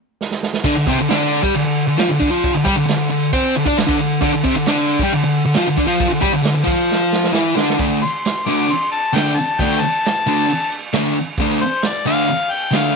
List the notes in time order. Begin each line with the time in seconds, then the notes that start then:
0.21 snare
0.31 snare
0.43 snare
0.54 snare
0.64 D3 D4, kick, crash
0.76 D3
0.87 C3 C4, kick, tambourine, crash
1.00 D3, tambourine
1.09 D3 D4, snare, tambourine, crash
1.22 tambourine
1.32 tambourine, crash
1.43 G3 G4, kick, tambourine
1.54 D3, tambourine, crash
1.65 D3, tambourine
1.77 crash
1.87 D3, tambourine
1.98 F3 F4, snare, tambourine, crash
2.09 D3
2.20 D3 D4, kick, tambourine, crash
2.31 F3 F4, tambourine
2.44 kick, crash
2.54 D3
2.64 G3 G4, kick, tambourine, crash
2.76 D3, tambourine
2.86 D3, snare, tambourine, crash
2.97 D3, tambourine
3.09 D3, tambourine, crash
3.21 tambourine
3.33 C4 C5, kick, tambourine, crash
3.46 tambourine
3.56 D3, crash
3.66 D4 D5, kick, tambourine
3.77 D3, snare, tambourine, crash
3.87 D3 D4, kick
3.98 D3, tambourine, crash
4.13 tambourine
4.21 D3 D4, kick, crash
4.34 D3
4.44 C3 C4, kick, tambourine, crash
4.56 D3, tambourine
4.66 D3 D4, snare, tambourine, crash
4.87 tambourine, crash
4.99 G3, kick, tambourine
5.04 G4
5.09 D3, tambourine, crash
5.24 D3, tambourine
5.32 crash
5.45 D3, tambourine
5.54 F3 F4, snare, tambourine, crash
5.67 D3
5.76 D3 D4, kick, tambourine, crash
5.87 F3 F4, tambourine
5.99 kick, tambourine, crash
6.09 D3, tambourine
6.21 G3 G4, kick, tambourine, crash
6.32 D3, tambourine
6.42 D3, snare, tambourine, crash
6.55 D3, tambourine
6.64 F3 F4, kick, tambourine, crash
6.77 tambourine
6.89 snare, tambourine
7.00 tambourine
7.12 snare, tambourine
7.23 snare, tambourine
7.33 E3 E4, snare, tambourine
7.55 D3 D4, snare, tambourine
7.70 snare
7.78 D3 A3 D4, kick, tambourine, crash
8.02 C6, tambourine, crash
8.25 snare, tambourine, crash
8.46 D3 A3 D4 D6, tambourine, crash
8.70 C6, tambourine, crash
8.92 A5, tambourine, crash
9.13 D3 A3 D4 G5, snare, tambourine, crash
9.37 A5, tambourine, crash
9.59 D3 A3 D4 G5, kick, tambourine, crash
9.81 A5, tambourine, crash
10.05 snare, tambourine, crash
10.27 D3 A3 D4, tambourine, crash
10.49 tambourine, crash
10.72 tambourine, crash
10.93 D3 A3 D4, snare, tambourine, crash
11.16 tambourine, crash
11.38 D3 A3 D4, kick, tambourine, crash
11.60 C5, tambourine, crash
11.82 snare, tambourine, crash
11.86 D5
12.05 D3 A3 D4 F5, tambourine, crash
12.28 tambourine, crash
12.51 G5, tambourine, crash
12.71 D3 A3 D4, snare, crash
12.75 F5, tambourine